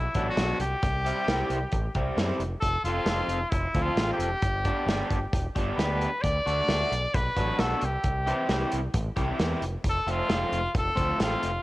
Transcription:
Already playing: trumpet E4
0.15 fingered electric bass A1, overdriven electric guitar F#3 B3 D4, kick, closed hi-hat
0.30 trumpet F#4
0.37 fingered electric bass B1, overdriven electric guitar F#3 B3 D4, snare, closed hi-hat
0.59 fingered electric bass C2, trumpet G4, closed hi-hat
0.83 fingered electric bass C2, kick, closed hi-hat
1.05 overdriven electric guitar G3 C4 E4 G4, closed hi-hat
1.28 fingered electric bass C2, overdriven electric guitar G3 C4 E4 G4, snare, closed hi-hat
1.50 fingered electric bass C2, closed hi-hat
1.72 fingered electric bass A1, kick, closed hi-hat
1.95 fingered electric bass C2, overdriven electric guitar G3 C4 E4 G4, kick, closed hi-hat
2.17 fingered electric bass F#2, overdriven electric guitar G3 C4 E4 G4, snare, closed hi-hat
2.39 fingered electric bass F1, closed hi-hat
2.61 fingered electric bass F1, trumpet A4, kick, closed hi-hat
2.84 fingered electric bass F1, overdriven electric guitar C4 F4 A4, trumpet F4, closed hi-hat
2.88 overdriven electric guitar F3
3.05 fingered electric bass F1, overdriven electric guitar F3 F4, snare, closed hi-hat
3.09 overdriven electric guitar C4 A4
3.28 fingered electric bass F1, closed hi-hat
3.50 fingered electric bass F1, trumpet E4, kick, closed hi-hat
3.74 fingered electric bass D2, overdriven electric guitar F3 C4 F4 A4, kick, closed hi-hat
3.82 trumpet F4
3.96 fingered electric bass A1, overdriven electric guitar F3 C4 F4 A4, snare, closed hi-hat
4.13 trumpet G4
4.19 fingered electric bass F1, closed hi-hat
4.42 fingered electric bass G1, kick, closed hi-hat
4.65 overdriven electric guitar B3 D4 G4, kick, closed hi-hat
4.86 fingered electric bass G1, overdriven electric guitar B3 D4 G4, snare, closed hi-hat
5.10 fingered electric bass G1, kick, closed hi-hat
5.33 fingered electric bass E1, kick, closed hi-hat
5.55 fingered electric bass G1, overdriven electric guitar B3 D4 G4, kick, closed hi-hat
5.75 fingered electric bass D2, overdriven electric guitar B3 D4, trumpet B4, closed hi-hat
5.79 overdriven electric guitar G4, snare
6.01 closed hi-hat
6.22 fingered electric bass D2, trumpet D5, kick, closed hi-hat
6.46 fingered electric bass D2, overdriven electric guitar A3 D4 F#4, closed hi-hat
6.68 fingered electric bass D2, overdriven electric guitar A3 D4 F#4, snare, closed hi-hat
6.92 fingered electric bass B1, closed hi-hat
7.14 fingered electric bass B1, trumpet B4, kick, closed hi-hat
7.36 fingered electric bass A1, overdriven electric guitar F#3 B3 D4 F#4, kick, closed hi-hat
7.58 fingered electric bass B1, overdriven electric guitar F#3 B3 D4 F#4, trumpet A4, snare, closed hi-hat
7.81 fingered electric bass C2, trumpet G4, closed hi-hat
8.04 fingered electric bass C2, kick, closed hi-hat
8.27 overdriven electric guitar E3 C4 E4 G4, closed hi-hat
8.48 fingered electric bass C2, overdriven electric guitar E3 C4 E4 G4, snare, closed hi-hat
8.71 fingered electric bass C2, closed hi-hat
8.94 fingered electric bass A1, kick, closed hi-hat
9.16 fingered electric bass C2, overdriven electric guitar E3 C4 E4 G4, kick, closed hi-hat
9.39 fingered electric bass E2, overdriven electric guitar E3 C4 E4 G4, snare, closed hi-hat
9.61 fingered electric bass F1, closed hi-hat
9.84 fingered electric bass F1, kick, closed hi-hat
9.89 trumpet A4
10.07 fingered electric bass F1, overdriven electric guitar F3 A3 C4 F4, closed hi-hat
10.11 trumpet F4
10.29 fingered electric bass F1, overdriven electric guitar F3 A3 C4 F4, snare, closed hi-hat
10.52 fingered electric bass F1, closed hi-hat
10.74 fingered electric bass F1, trumpet A4, kick, closed hi-hat
10.95 fingered electric bass D2, overdriven electric guitar F3 A3 C4 F4, kick, closed hi-hat
11.18 fingered electric bass A1, overdriven electric guitar F3 A3 C4 F4, trumpet F4, snare, closed hi-hat
11.43 fingered electric bass F1, closed hi-hat

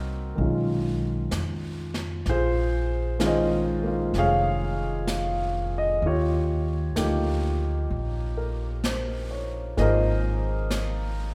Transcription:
Already playing: upright bass C2, grand piano F#3 A#3 C4 D#4 F#4 A#4
0.35 upright bass B1, grand piano D#3 G#3 C#4, brush sweep
0.40 grand piano F4
1.31 upright bass F2, brush sweep, snare, hi-hat pedal
1.94 snare
2.26 upright bass A#1, grand piano F4 G#4 C5, brush sweep, snare
3.19 grand piano D#3 G#3 C#4 F4, brush sweep, snare, hi-hat pedal
3.25 grand piano G#4 C5 D#5
3.83 grand piano A#3 D#4 F4
4.13 upright bass F1, brush sweep, snare
4.18 grand piano G#4 C#5 F5
5.07 brush sweep, snare, hi-hat pedal
5.78 grand piano D#5
6.01 upright bass D#2, brush sweep
6.06 grand piano F4 G4 C#5
6.96 upright bass D2, grand piano F3 A#3 D#4 G4, brush sweep, snare, hi-hat pedal
7.90 upright bass A#1, brush sweep
8.37 grand piano A#4
8.84 grand piano C5, brush sweep, snare, hi-hat pedal
9.31 grand piano C#5
9.77 upright bass G#1, grand piano F3 A#3 D#4 G#4 C5 D#5, brush sweep, snare
9.81 grand piano A#4
10.70 brush sweep, snare, hi-hat pedal

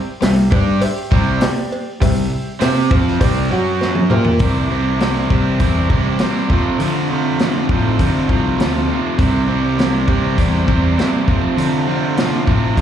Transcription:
0.21 fingered electric bass C2, overdriven electric guitar C3 G3, grand piano G4 C5 E5, snare, open hi-hat, cowbell
0.51 fingered electric bass G2, overdriven electric guitar G3 D4 G4, kick, cowbell
0.81 grand piano G4 C5 E5, muted overdriven electric guitar stroke, muted fingered electric bass stroke, open hi-hat, cowbell
1.11 fingered electric bass C2, overdriven electric guitar C3 G3 C4, kick
1.41 grand piano G4 C5 D5, snare, open hi-hat, cowbell
1.72 cowbell
2.00 fingered electric bass C2, overdriven electric guitar C3 G3, grand piano G4 C5 E5, kick, open hi-hat, cowbell
2.59 fingered electric bass C3, overdriven electric guitar C4 G4 C5, grand piano G4 C5 E5, snare, open hi-hat, cowbell
2.91 fingered electric bass F2, overdriven electric guitar F3 C4 F4, kick, cowbell
3.07 snare
3.20 fingered electric bass C2, overdriven electric guitar C3 G3 C4, grand piano G4 C5 D5, kick, open hi-hat, cowbell
3.50 fingered electric bass F#2, overdriven electric guitar F#3 C#4 F#4, grand piano F#4 C#5 F#5
3.81 snare, cowbell
3.95 high tom
4.09 fingered electric bass A#2, overdriven electric guitar A#3 F4 A#4, grand piano G4 C5 E5, mid tom, cowbell
4.24 floor tom
4.39 fingered electric bass C2, overdriven electric guitar C3 E3 G3 C4 E4, kick, open hi-hat
4.69 overdriven electric guitar C3 E3 G3 C4 E4
5.00 overdriven electric guitar C3 E3 G3 C4 E4, snare, open hi-hat
5.29 overdriven electric guitar C3 E3 G3 C4 E4, fingered electric bass C3, kick
5.59 fingered electric bass E2, overdriven electric guitar C3 E3 G3 C4 E4, kick, open hi-hat
5.89 overdriven electric guitar C3 E3 G3 C4 E4, fingered electric bass C3, kick
6.19 overdriven electric guitar C3 E3 G3 C4 E4, snare, open hi-hat
6.36 snare
6.50 fingered electric bass F2, overdriven electric guitar F2 C3 F3 A3 C4 F4, kick
6.79 overdriven electric guitar F2 C3 F3 A3 C4 F4, fingered electric bass D3, open hi-hat
7.09 overdriven electric guitar F2 C3 F3 A3 C4 F4
7.38 overdriven electric guitar F2 C3 F3 A3 C4 F4, snare, open hi-hat
7.69 overdriven electric guitar F2 C3 F3 A3 C4, fingered electric bass A2, kick
7.73 overdriven electric guitar F4
7.99 overdriven electric guitar F2 C3 F3 A3 C4 F4, fingered electric bass D3, kick, open hi-hat
8.29 fingered electric bass C2, overdriven electric guitar F2 C3 F3 A3 C4 F4, kick
8.59 fingered electric bass D2, overdriven electric guitar F2 C3 F3 A3 C4 F4, snare, open hi-hat
8.89 overdriven electric guitar F2 C3 F3 A3 C4 F4
9.18 fingered electric bass C2, overdriven electric guitar C3 E3 G3 C4 E4, kick, open hi-hat
9.47 overdriven electric guitar C3 E3 G3 C4 E4
9.76 overdriven electric guitar C3 E3 G3 C4 E4, snare, open hi-hat
10.07 overdriven electric guitar C3 E3 G3 C4 E4, fingered electric bass C3, kick
10.37 fingered electric bass E2, overdriven electric guitar C3 E3 G3 C4 E4, kick, open hi-hat
10.65 fingered electric bass E2, overdriven electric guitar C3 E3 G3 C4 E4, kick
10.95 overdriven electric guitar C3 E3 G3 C4 E4, open hi-hat
11.00 snare
11.25 overdriven electric guitar F2 C3 F3 A3 C4 F4, fingered electric bass F2, kick
11.55 overdriven electric guitar F2 C3 F3 A3 C4 F4, fingered electric bass D3, open hi-hat
11.85 overdriven electric guitar F2 C3 F3 A3 C4 F4
12.16 overdriven electric guitar F2 C3 F3 A3 C4 F4, snare, open hi-hat
12.46 overdriven electric guitar F2 C3 F3 A3 C4 F4, fingered electric bass A2, kick
12.75 overdriven electric guitar F2 C3 F3 A3 C4 F4, fingered electric bass D3, kick, open hi-hat

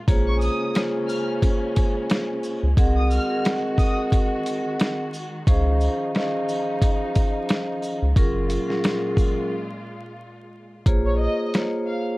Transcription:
0.07 analog synth bass A#1, string section C#3 G#3 C#4, vibraphone A#3 F4 G#4 C5 C#5, kick, closed hi-hat, sleigh bells
0.27 violin section C#6
0.41 violin section D#6, shaker, sleigh bells
0.75 vibraphone A#3 F4 G#4 C5 C#5, snare, closed hi-hat, sleigh bells
1.07 violin section F6, shaker, sleigh bells
1.42 kick, closed hi-hat, sleigh bells
1.76 kick, closed hi-hat, shaker, sleigh bells
2.10 snare, closed hi-hat, sleigh bells
2.43 shaker, sleigh bells
2.63 analog synth bass C#2
2.77 analog synth bass C2, string section D#3 F#4, vibraphone C4 G#4 A#4 D#5 F#5, kick, closed hi-hat, sleigh bells
2.96 violin section D#6
3.11 violin section F6, shaker, sleigh bells
3.29 vibraphone C4 G#4 A#4 D#5 F#5
3.45 snare, closed hi-hat, sleigh bells
3.78 violin section D#6, kick, shaker, sleigh bells
4.12 kick, closed hi-hat, sleigh bells
4.46 closed hi-hat, shaker, sleigh bells
4.80 snare, closed hi-hat, sleigh bells
5.13 shaker, sleigh bells
5.46 analog synth bass C#2, string section F3 D#4, vibraphone C#4 G#4 C5 D#5 F5, kick, closed hi-hat, sleigh bells
5.81 shaker, sleigh bells
6.15 vibraphone C#4 G#4 C5 D#5 F5, snare, closed hi-hat, sleigh bells
6.49 shaker, sleigh bells
6.82 kick, closed hi-hat, sleigh bells
7.16 kick, closed hi-hat, shaker, sleigh bells
7.49 snare, closed hi-hat, sleigh bells
7.82 shaker, sleigh bells
8.03 analog synth bass C#2
8.16 analog synth bass F#1, string section A#2 G#3 F4, vibraphone F#3 C#4 F4 G#4 A#4, kick, closed hi-hat, sleigh bells
8.50 closed hi-hat, shaker, sleigh bells
8.68 vibraphone F#3 C#4 F4 G#4 A#4, snare
8.84 snare, closed hi-hat, sleigh bells
9.17 kick, shaker, sleigh bells
10.86 analog synth bass A#1, vibraphone A#3 F4 G#4 C5 C#5, kick, closed hi-hat
11.05 violin section C#5
11.19 violin section D#5
11.54 vibraphone A#3 F4 G#4 C5 C#5, snare, closed hi-hat
11.86 violin section F5

